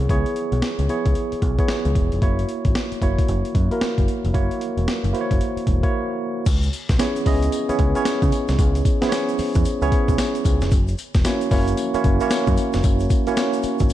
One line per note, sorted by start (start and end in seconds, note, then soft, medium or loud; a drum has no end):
0.00 0.09 B3 medium
0.00 0.10 E4 medium
0.00 0.10 G#4 medium
0.00 0.11 C#5 medium
0.09 0.23 C#2 medium
0.09 0.67 B3 medium
0.09 0.68 E4 medium
0.09 0.68 G#4 medium
0.09 0.68 C#5 loud
0.09 kick loud
0.09 closed hi-hat medium
0.26 closed hi-hat medium
0.36 closed hi-hat medium
0.52 0.60 B1 medium
0.52 closed hi-hat soft
0.62 snare loud
0.62 closed hi-hat medium
0.79 0.87 C#2 medium
0.79 closed hi-hat medium
0.89 1.38 B3 medium
0.89 1.38 E4 medium
0.89 1.38 G#4 medium
0.89 1.38 C#5 medium
0.89 closed hi-hat medium
1.06 1.14 C#2 medium
1.06 kick medium
1.06 closed hi-hat medium
1.15 closed hi-hat medium
1.32 muted picked electric bass stroke soft
1.32 closed hi-hat soft
1.42 1.56 B1 medium
1.42 kick medium
1.42 closed hi-hat medium
1.58 2.05 B3 medium
1.58 2.05 E4 medium
1.58 2.05 G#4 medium
1.58 2.05 C#5 medium
1.58 kick medium
1.58 closed hi-hat soft
1.68 snare loud
1.68 closed hi-hat medium
1.85 1.93 C#2 medium
1.85 closed hi-hat soft
1.95 2.09 E1 medium
1.95 kick medium
1.95 closed hi-hat medium
2.12 2.20 F1 medium
2.12 closed hi-hat soft
2.22 2.44 F#1 medium
2.22 2.80 A#3 medium
2.22 2.80 E4 medium
2.22 2.80 F#4 medium
2.22 2.80 C#5 loud
2.22 kick loud
2.22 closed hi-hat medium
2.39 closed hi-hat medium
2.49 closed hi-hat medium
2.65 2.73 G#1 medium
2.65 kick loud
2.65 closed hi-hat medium
2.75 snare loud
2.75 closed hi-hat medium
2.92 muted picked electric bass stroke soft
2.92 closed hi-hat medium
3.02 3.15 F#1 medium
3.02 3.50 A#3 medium
3.02 3.51 E4 medium
3.02 3.51 F#4 medium
3.02 3.51 C#5 medium
3.02 kick medium
3.02 closed hi-hat medium
3.19 kick medium
3.19 closed hi-hat medium
3.28 3.42 F#1 loud
3.28 closed hi-hat medium
3.45 closed hi-hat medium
3.55 3.68 F#2 medium
3.55 kick medium
3.55 closed hi-hat medium
3.71 4.17 A#3 medium
3.71 4.17 E4 medium
3.71 4.17 F#4 medium
3.71 4.18 A#4 medium
3.71 closed hi-hat soft
3.81 muted picked electric bass stroke soft
3.81 snare loud
3.81 closed hi-hat medium
3.98 4.06 F#1 medium
3.98 kick medium
3.98 closed hi-hat soft
4.08 closed hi-hat medium
4.24 4.33 F1 medium
4.24 closed hi-hat soft
4.34 4.48 F#1 medium
4.34 4.92 A#3 medium
4.34 4.92 E4 medium
4.34 4.92 F#4 medium
4.34 4.92 C#5 loud
4.34 kick loud
4.34 closed hi-hat medium
4.51 closed hi-hat medium
4.61 closed hi-hat medium
4.77 4.85 E1 medium
4.77 closed hi-hat soft
4.88 snare loud
4.88 closed hi-hat medium
5.04 5.12 F#1 medium
5.04 closed hi-hat medium
5.13 5.62 A#3 medium
5.13 5.62 E4 medium
5.13 5.63 F#4 medium
5.13 5.22 C5 medium
5.13 closed hi-hat medium
5.21 5.66 C#5 loud
5.31 5.39 F#1 medium
5.31 kick medium
5.31 closed hi-hat medium
5.41 closed hi-hat medium
5.57 muted picked electric bass stroke soft
5.57 closed hi-hat medium
5.67 5.80 E1 medium
5.67 kick medium
5.67 closed hi-hat medium
5.83 6.29 A#3 medium
5.83 6.29 E4 medium
5.83 6.30 F#4 medium
5.83 6.30 C#5 loud
5.83 kick medium
5.83 closed hi-hat soft
6.46 6.68 C#2 loud
6.46 kick loud
6.46 closed hi-hat medium
6.46 crash loud
6.46 tambourine medium
6.46 shaker medium
6.63 closed hi-hat medium
6.63 shaker soft
6.73 closed hi-hat medium
6.73 tambourine medium
6.73 shaker medium
6.89 6.98 B1 medium
6.89 kick loud
6.89 snare medium
6.89 closed hi-hat medium
6.89 shaker medium
6.99 7.20 B3 medium
6.99 7.20 C#4 medium
6.99 7.20 E4 medium
6.99 7.21 G#4 medium
6.99 7.21 C#5 loud
6.99 snare loud
6.99 closed hi-hat medium
6.99 tambourine loud
6.99 shaker medium
7.16 closed hi-hat medium
7.16 shaker soft
7.26 7.48 C#2 medium
7.26 7.55 B3 medium
7.26 7.55 C#4 medium
7.26 7.55 E4 medium
7.26 7.55 G#4 medium
7.26 7.56 D#5 medium
7.26 kick medium
7.26 open hi-hat medium
7.26 tambourine medium
7.26 shaker soft
7.43 closed hi-hat medium
7.43 shaker medium
7.52 closed hi-hat medium
7.52 tambourine medium
7.52 shaker medium
7.69 7.86 B3 medium
7.69 7.86 C#4 medium
7.69 7.86 E4 medium
7.69 7.87 G#4 medium
7.69 7.87 C#5 medium
7.69 muted picked electric bass stroke medium
7.69 closed hi-hat medium
7.69 shaker medium
7.79 7.93 C#2 loud
7.79 kick loud
7.79 closed hi-hat medium
7.95 8.70 B3 medium
7.95 8.71 C#4 medium
7.95 8.71 E4 medium
7.95 8.71 G#4 medium
7.95 8.71 C#5 loud
7.95 closed hi-hat soft
7.95 shaker medium
8.05 snare loud
8.05 closed hi-hat medium
8.05 tambourine loud
8.05 shaker medium
8.22 8.31 C#3 loud
8.22 kick loud
8.22 closed hi-hat medium
8.22 shaker soft
8.32 closed hi-hat medium
8.32 tambourine medium
8.32 shaker medium
8.48 8.57 C2 medium
8.48 snare medium
8.48 closed hi-hat soft
8.48 shaker medium
8.59 8.80 C#2 loud
8.59 kick loud
8.59 closed hi-hat medium
8.59 tambourine medium
8.59 shaker medium
8.75 closed hi-hat medium
8.75 shaker soft
8.85 kick loud
8.85 closed hi-hat medium
8.85 tambourine medium
8.85 shaker medium
9.02 9.58 B3 medium
9.02 9.58 C#4 medium
9.02 9.58 E4 medium
9.02 9.58 G#4 medium
9.02 9.07 C5 medium
9.02 muted picked electric bass stroke soft
9.02 snare medium
9.02 closed hi-hat medium
9.02 shaker soft
9.09 9.62 C#5 loud
9.09 snare loud
9.09 closed hi-hat medium
9.09 tambourine loud
9.09 shaker medium
9.29 closed hi-hat medium
9.29 shaker medium
9.38 muted picked electric bass stroke medium
9.38 open hi-hat medium
9.38 tambourine medium
9.38 shaker soft
9.54 9.64 E2 loud
9.54 kick medium
9.54 closed hi-hat medium
9.54 shaker medium
9.65 closed hi-hat medium
9.65 tambourine medium
9.65 shaker medium
9.82 9.90 C#2 medium
9.82 10.57 B3 medium
9.82 10.57 C#4 medium
9.82 10.57 E4 medium
9.82 10.57 G#4 medium
9.82 10.57 C#5 loud
9.82 closed hi-hat medium
9.82 shaker soft
9.92 kick loud
9.92 closed hi-hat medium
10.08 10.16 B1 medium
10.08 kick medium
10.08 closed hi-hat soft
10.08 shaker medium
10.18 snare loud
10.18 closed hi-hat medium
10.18 tambourine loud
10.18 shaker medium
10.35 closed hi-hat medium
10.35 shaker soft
10.45 10.59 C#2 medium
10.45 kick medium
10.45 closed hi-hat medium
10.45 tambourine medium
10.45 shaker medium
10.61 10.70 F1 medium
10.61 snare medium
10.61 closed hi-hat soft
10.61 shaker medium
10.71 10.93 F#1 loud
10.71 kick loud
10.71 closed hi-hat medium
10.71 tambourine medium
10.71 shaker medium
10.88 closed hi-hat medium
10.88 shaker soft
10.98 closed hi-hat medium
10.98 tambourine medium
10.98 shaker medium
11.14 11.23 E1 medium
11.14 kick loud
11.14 snare medium
11.14 closed hi-hat medium
11.14 shaker soft
11.25 11.45 A#3 medium
11.25 11.46 C#4 medium
11.25 11.46 E4 medium
11.25 11.46 F#4 medium
11.25 11.46 C#5 loud
11.25 snare loud
11.25 closed hi-hat medium
11.25 tambourine loud
11.25 shaker medium
11.41 closed hi-hat medium
11.41 shaker medium
11.51 11.73 F#1 medium
11.51 11.80 A#3 medium
11.51 11.80 C#4 medium
11.51 11.80 E4 medium
11.51 11.80 F#4 medium
11.51 11.81 C#5 medium
11.51 kick medium
11.51 open hi-hat medium
11.51 tambourine medium
11.51 shaker soft
11.67 closed hi-hat medium
11.67 shaker medium
11.77 closed hi-hat medium
11.77 tambourine medium
11.77 shaker medium
11.94 12.11 A#3 medium
11.94 12.11 C#4 medium
11.94 12.11 E4 medium
11.94 12.12 F#4 medium
11.94 12.12 C#5 loud
11.94 muted picked electric bass stroke medium
11.94 closed hi-hat medium
11.94 shaker soft
12.04 12.18 F#1 loud
12.04 kick loud
12.04 closed hi-hat medium
12.21 12.96 A#3 medium
12.21 12.96 C#4 medium
12.21 12.96 E4 medium
12.21 12.96 F#4 medium
12.21 12.96 C#5 loud
12.21 closed hi-hat soft
12.21 shaker medium
12.30 snare loud
12.30 closed hi-hat medium
12.30 tambourine loud
12.30 shaker medium
12.47 12.56 F#2 loud
12.47 kick loud
12.47 closed hi-hat medium
12.47 shaker soft
12.57 closed hi-hat medium
12.57 tambourine medium
12.57 shaker medium
12.73 12.82 F1 medium
12.73 snare medium
12.73 closed hi-hat soft
12.73 shaker medium
12.83 13.06 F#1 loud
12.83 kick loud
12.83 closed hi-hat medium
12.83 tambourine medium
12.83 shaker medium
13.00 closed hi-hat medium
13.00 shaker soft
13.10 kick loud
13.10 closed hi-hat medium
13.10 tambourine medium
13.10 shaker medium
13.27 13.83 A#3 medium
13.27 13.83 C#4 medium
13.27 13.83 E4 medium
13.27 13.83 F#4 medium
13.27 13.83 C#5 loud
13.27 muted picked electric bass stroke soft
13.27 closed hi-hat medium
13.27 shaker soft
13.37 snare loud
13.37 closed hi-hat medium
13.37 tambourine loud
13.37 shaker medium
13.53 closed hi-hat medium
13.53 shaker medium
13.63 muted picked electric bass stroke medium
13.63 closed hi-hat medium
13.63 tambourine medium
13.63 shaker soft
13.79 13.88 G#1 medium
13.79 kick loud
13.79 closed hi-hat medium
13.79 shaker medium
13.89 tambourine medium
13.89 shaker medium